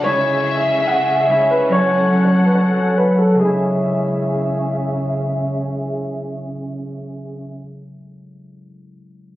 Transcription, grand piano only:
0.04 C#5
0.57 E5
0.78 E5
0.87 F#5
1.20 E5
1.30 E5
1.51 B4
1.72 C#5
2.25 C#5
2.45 B4
2.55 C#5
2.98 B4
3.18 A4
3.39 G#4

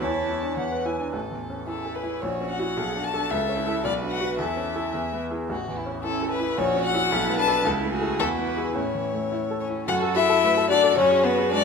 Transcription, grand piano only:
0.01 E2
0.15 C#5
0.30 E4
0.43 D4
0.57 E2
0.72 B4
0.85 E4
1.00 D4
1.13 A1
1.31 E2
1.50 C#4
1.67 E4
1.86 A4
2.04 E4
2.23 A#1
2.41 C#4
2.59 E4 F#4
2.77 B1
2.96 D4
3.14 D4 A4
3.31 C#2
3.49 C#4
3.67 E4 A4
3.85 B1
4.03 D4
4.20 F#4 B4
4.39 E2
4.57 C#4
4.75 E4 A4
4.93 E2
5.13 B3
5.31 E4 G#4
5.49 A1
5.68 E2
5.86 C#4
6.04 E4
6.22 A4
6.40 E4
6.58 A#1
6.76 C#4
6.94 E4 F#4
7.12 B1
7.29 B3
7.47 D4 A4
7.65 C#2
7.83 A3
8.01 E4 A4
8.19 E2
8.38 B3
8.57 E4 G#4
8.75 A2
8.94 E3
9.14 A3
9.32 E4
9.51 A4
9.70 E4
9.88 F#2
10.02 A4
10.16 F#4
10.29 A4
10.43 A3
10.57 A4
10.70 F#4
10.84 A4
10.97 F#2
11.11 G#4
11.25 B4
11.39 G#4
11.52 G#3

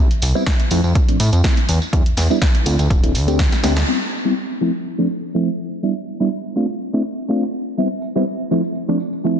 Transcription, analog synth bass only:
0.11 C2
0.22 C2
0.71 F2
0.84 F2
1.08 A2
1.20 A2
1.33 F2
1.69 E2
1.93 E2
2.06 E2
2.17 E2
2.66 D2
2.79 D2
2.90 D1
3.15 D2
3.64 D2

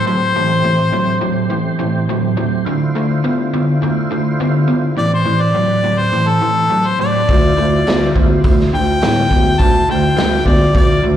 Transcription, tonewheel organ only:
Already playing: A2 C4 G4 B4
0.35 A3 C4 G4 C5
2.65 D3 E4 F4 C5
4.96 A2 C4 G4 B4
7.27 E4 F4 C5
9.60 E4 F4 C5

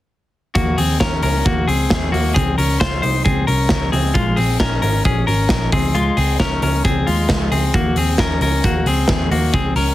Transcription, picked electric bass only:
0.55 D#2
0.78 D#2
1.23 C#2
1.46 D#2
1.67 C#2
1.91 D#2
2.13 D#2
2.36 C#2
2.58 C#2
3.03 C2
3.25 C#2
3.48 C2
3.93 C#2
4.15 A#1
4.38 A#1
4.82 G#1
5.05 A#1
5.28 G#1
5.50 A#1
5.72 C#2
6.17 C#2
6.40 C#2
6.62 C#2
6.84 C#2
7.07 D#2
7.30 C#2
7.51 C#2
7.74 D#2
7.96 D#2
8.19 D#2
8.41 C#2
8.64 D#2
8.85 C#2
9.09 D#2
9.31 D#2
9.54 C#2
9.75 C#2

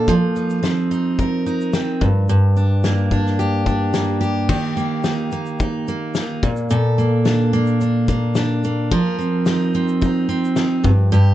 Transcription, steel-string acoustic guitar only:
Already playing: A#3 D4 A4
0.09 F3
0.36 D#4
0.63 C4
0.91 D#4
1.19 A#4
1.46 D#4
1.73 C4
2.01 G2
2.29 G2
2.57 D4
2.84 A#3
3.12 D4
3.39 G4
3.66 D4
3.94 A#3
4.21 G4
4.49 D#3 G4
4.77 A#3
5.04 D#4
5.32 A#3
5.60 D#4
5.88 A#3
6.17 D#4
6.43 A#2
6.71 A#2 A4
6.98 A#3
7.25 D4
7.53 A#3
7.81 D4
8.09 A#3
8.37 D4
8.65 A#3
8.91 F3 A#4
9.19 C4
9.47 D#4
9.75 C4
10.01 D#4
10.29 C4
10.57 D#4
10.84 G2
11.12 G2 G4

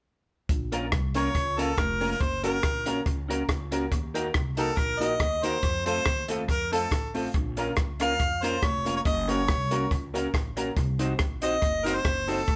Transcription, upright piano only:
0.72 A#3 C#4 F4 A#4
1.15 A#3 C#4 F4 A#4
1.58 A#3 C#4 F4 A#4
2.01 A#3 C#4 F4 A#4
2.43 A#3 C#4 F#4 A#4
2.86 A#3 C#4 F#4 A#4
3.29 A#3 C#4 F#4 A#4
3.72 A#3 C#4 F#4 A#4
4.14 A#3 D#4 F#4 A#4
4.57 A#3 D#4 F#4 A#4
5.00 A#3 D#4 F#4 A#4
5.43 A#3 D#4 F#4 A#4
5.86 A3 C4 F4 A4
6.28 A3 C4 F4 A4
6.72 A3 C4 F4 A4
7.14 A3 C4 F4 A4
7.57 A#3 C#4 F4 A#4
8.00 A#3 C#4 F4 A#4
8.43 A#3 C#4 F4 A#4
8.85 A#3 C#4 F4 A#4
9.28 A#3 C#4 F#4 A#4
9.71 A#3 C#4 F#4 A#4
10.14 A#3 C#4 F#4 A#4
10.56 A#3 C#4 F#4 A#4
10.99 C4 D#4 F#4 C5
11.42 C4 D#4 F#4 C5
11.85 C4 D#4 F#4 C5
12.28 C4 D#4 F#4 C5

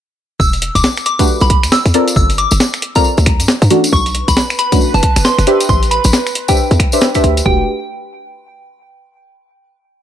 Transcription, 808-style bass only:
0.40 E1
0.75 E1
1.41 B1
1.63 E2
1.86 E2
2.16 G1
2.52 G1
3.18 D2
3.40 G2
3.62 G2
3.93 B1
4.28 B1
4.94 F#1
5.16 F#1
5.39 F#1
5.69 A1
6.05 A1
6.71 E2
7.24 D2
7.46 E1

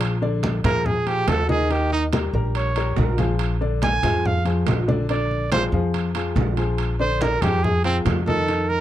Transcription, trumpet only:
0.65 A#4
0.86 G#4
1.07 G4
1.29 A4
1.50 G#4
1.72 G4
1.92 D#4
2.56 C#5
2.99 A#4
3.84 G#5
4.26 F5
5.11 D5
5.52 C5
7.00 C5
7.22 A#4
7.42 G4
7.63 G#4
7.85 C4
8.27 A4
8.69 A#4

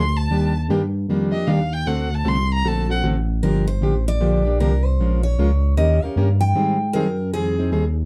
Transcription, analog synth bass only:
Already playing: D2
0.30 D#2
0.68 G2
1.08 F2
1.47 D#2
1.86 D2
2.25 C2
2.64 A#1
3.04 A1
3.42 G1
3.81 A1
4.20 A#1
4.59 C2
4.98 A#1
5.38 C#2
5.77 D#2
6.02 D#2
6.16 G2
6.56 G#2
6.94 F#2
7.33 F2
7.71 D#2

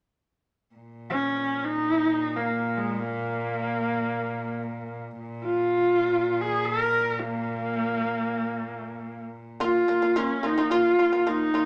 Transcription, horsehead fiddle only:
1.10 C#4
1.64 D#4
2.36 A#3
2.77 G#3
3.05 A#3
5.44 F4
6.41 G#4
6.65 A#4
7.20 A#3
9.62 F4
10.18 C#4
10.46 D#4
10.72 F4
11.17 F4
11.28 D#4

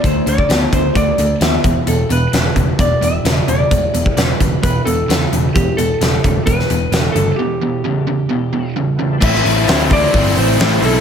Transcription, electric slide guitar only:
0.05 C5
0.29 D5
0.74 C5
0.97 D5
1.42 E5
1.88 A4
2.12 B4
2.81 D5
3.04 E5
3.49 D5
4.17 B4
4.63 B4
4.85 A4
5.54 G4
5.77 A4
6.46 B4
7.00 A4
7.12 A4
7.36 G4
9.23 E5
9.93 D5
10.39 C5
10.61 C5
10.85 A4

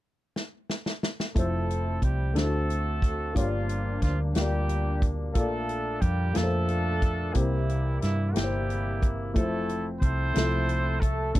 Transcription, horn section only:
1.37 A3 C4 E4 A4
2.03 G3 G4
2.35 A3 C4 F#4 A4
3.36 F3 A#3 D4 F4
4.03 F3 F4
4.35 G3 A#3 D4 G4
5.34 A3 D4 F4 A4
6.00 G3 G4
6.36 A3 D4 F4 A4
7.34 E3 E4
7.38 G3 A#3
8.01 E3 E4
8.34 G3 G4
8.38 E3 A#3 E4
9.35 E3 A3 E4 A4
9.39 C4
10.01 C4 E4 A4 C5
10.99 A3 A4
11.34 A3 C4 A4

